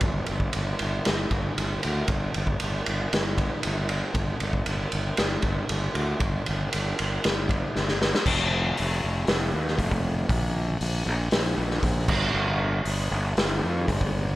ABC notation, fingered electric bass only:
X:1
M:4/4
L:1/8
Q:1/4=117
K:Gm
V:1 name="Fingered electric bass" clef=bass
G,,, G,,, G,,, G,,, G,,, G,,, G,,, D,, | G,,, G,,, G,,, G,,, G,,,2 G,,,2 | G,,, G,,, G,,, G,,, G,,, G,,, G,,, D,, | G,,, G,,, G,,, G,,, G,,,2 G,,,2 |
F,,,2 F,,, F,,, F,,, E,, F,,,2 | B,,,2 B,,, B,,, B,,, B,,, B,,, G,,, | G,,,2 G,,, G,,, G,,, F,, G,,,2 |]